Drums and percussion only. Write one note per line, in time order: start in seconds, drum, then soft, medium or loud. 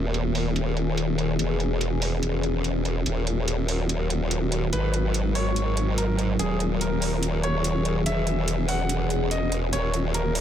0.14 closed hi-hat medium
0.35 open hi-hat medium
0.56 closed hi-hat medium
0.77 closed hi-hat soft
0.98 closed hi-hat medium
1.18 closed hi-hat soft
1.39 closed hi-hat medium
1.60 closed hi-hat soft
1.81 closed hi-hat medium
2.02 open hi-hat medium
2.23 closed hi-hat medium
2.43 closed hi-hat soft
2.64 closed hi-hat medium
2.85 closed hi-hat medium
3.06 closed hi-hat medium
3.27 closed hi-hat medium
3.48 closed hi-hat medium
3.68 open hi-hat medium
3.89 closed hi-hat medium
4.10 closed hi-hat soft
4.31 closed hi-hat medium
4.52 closed hi-hat soft
4.73 closed hi-hat medium
4.94 closed hi-hat medium
5.14 closed hi-hat medium
5.35 open hi-hat medium
5.56 closed hi-hat medium
5.77 closed hi-hat soft
5.98 closed hi-hat medium
6.19 closed hi-hat medium
6.39 closed hi-hat medium
6.60 closed hi-hat soft
6.81 closed hi-hat medium
7.02 open hi-hat medium
7.23 closed hi-hat medium
7.43 closed hi-hat soft
7.64 closed hi-hat medium
7.85 closed hi-hat soft
8.06 closed hi-hat medium
8.27 closed hi-hat soft
8.48 closed hi-hat medium
8.69 open hi-hat medium
8.89 closed hi-hat medium
9.10 closed hi-hat soft
9.31 closed hi-hat medium
9.52 closed hi-hat soft
9.73 closed hi-hat medium
9.94 closed hi-hat soft
10.14 closed hi-hat medium
10.35 open hi-hat medium